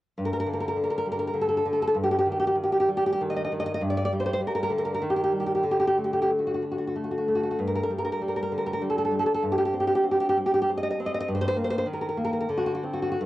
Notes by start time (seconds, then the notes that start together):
0.18 G2
0.25 A#4
0.33 A#4
0.40 A#4
0.47 D3
0.53 A#4
0.60 A#4
0.68 A#4
0.76 D3
0.84 A#4
0.90 A#4
0.98 A#4
1.06 G3
1.12 A#4
1.19 A#4
1.27 A#4
1.34 D3
1.41 A4
1.49 A4
1.57 A4
1.65 D3
1.73 A4
1.82 A4
1.88 A4
1.95 G2
2.04 G4
2.11 G4
2.19 G4
2.26 D#3
2.32 G4
2.40 G4
2.47 G4
2.55 D#3
2.63 G4
2.72 G4
2.80 G4
2.89 G3
2.97 G4
3.06 G4
3.12 G4
3.21 D#3
3.30 D#5
3.36 D#5
3.45 D#5
3.52 D#3
3.60 D#5
3.66 D#5
3.74 D#5
3.81 G2
3.90 D5
3.97 D5
4.05 D5
4.13 G3
4.20 C5
4.26 C5
4.33 C5
4.40 G3
4.47 A#4
4.55 A#4
4.63 A#4
4.70 D3
4.78 A#4
4.85 A#4
4.94 A#4
5.02 D#3
5.10 G4
5.16 G4
5.24 G4
5.32 G3
5.40 G4
5.46 G4
5.55 G4
5.63 D3
5.71 G4
5.80 G4
5.87 G4
5.98 A3
6.04 G4
6.13 G4
6.22 G4
6.30 A3
6.39 F#4
6.47 F#4
6.54 F#4
6.62 D4
6.71 F#4
6.78 F#4
6.87 F#4
6.96 A3
7.04 F#4
7.11 F#4
7.18 F#4
7.28 A3
7.35 F#4
7.43 F#4
7.51 F#4
7.59 G2
7.67 A#4
7.75 A#4
7.83 A#4
7.90 G3
7.98 A#4
8.05 A#4
8.12 A#4
8.22 G3
8.28 A#4
8.36 A#4
8.43 A#4
8.52 D3
8.58 A#4
8.66 A#4
8.73 A#4
8.82 G3
8.90 A4
8.98 A4
9.05 A4
9.11 G3
9.19 A4
9.26 A4
9.34 A4
9.43 G2
9.52 G4
9.58 G4
9.65 G4
9.73 C4
9.80 G4
9.87 G4
9.95 G4
10.04 C4
10.11 G4
10.20 G4
10.29 G4
10.37 G3
10.46 G4
10.54 G4
10.62 G4
10.69 C4
10.78 D#5
10.83 D#5
10.91 D#5
11.00 C4
11.06 D#5
11.14 D#5
11.21 D#5
11.28 G2
11.35 C5
11.41 C5
11.48 C5
11.56 A#3
11.64 C5
11.70 C5
11.78 C5
11.86 D#3
11.93 A#4
12.01 A#4
12.09 A#4
12.17 A#3
12.25 A#4
12.33 A#4
12.40 A#4
12.49 D3
12.57 F#4
12.66 F#4
12.75 F#4
12.83 C4
12.93 F#4
13.02 F#4
13.12 F#4
13.21 G2